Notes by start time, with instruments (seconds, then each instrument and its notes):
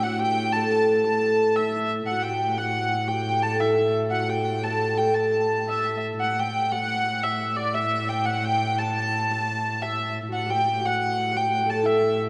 Already playing: viola da gamba A2, harp D4 E4 G4
0.03 harp F#4, hurdy-gurdy F#5
0.19 harp G4, hurdy-gurdy G5
0.52 harp A4, hurdy-gurdy A5
0.89 harp B4
1.04 harp A4, hurdy-gurdy A5
1.56 harp E4, hurdy-gurdy E5
1.76 harp E4
2.06 viola da gamba A2, hurdy-gurdy F#5
2.11 harp F#4
2.23 hurdy-gurdy G5
2.29 harp G4
2.38 harp G4
2.49 harp G4
2.57 harp F#4, hurdy-gurdy F#5
2.93 harp F#4
3.08 harp G4, hurdy-gurdy G5
3.29 harp G4
3.42 harp A4, hurdy-gurdy A5
3.60 harp E4, hurdy-gurdy E5
3.75 harp E4 F#4
4.11 harp F#4, hurdy-gurdy F#5
4.28 harp G4, hurdy-gurdy G5
4.45 harp G4, hurdy-gurdy G5
4.63 harp A4, hurdy-gurdy A5
4.79 harp A4
4.97 harp G4, hurdy-gurdy G5
5.14 harp A4, hurdy-gurdy A5
5.69 hurdy-gurdy E5
6.20 viola da gamba A2, hurdy-gurdy F#5
6.39 hurdy-gurdy G5
6.72 hurdy-gurdy F#5
7.24 hurdy-gurdy E5
7.57 hurdy-gurdy D5
7.74 hurdy-gurdy E5
8.09 hurdy-gurdy G5
8.25 hurdy-gurdy F#5
8.45 hurdy-gurdy G5
8.79 hurdy-gurdy A5
9.31 hurdy-gurdy A5
9.82 hurdy-gurdy E5
10.29 viola da gamba A2, harp F#4
10.33 hurdy-gurdy F#5
10.46 harp G4
10.50 hurdy-gurdy G5
10.64 harp G4
10.80 harp F#4
10.85 hurdy-gurdy F#5
11.31 harp G4
11.37 hurdy-gurdy G5
11.49 harp G4
11.66 harp A4
11.70 hurdy-gurdy A5
11.83 harp E4, hurdy-gurdy E5
12.02 harp E4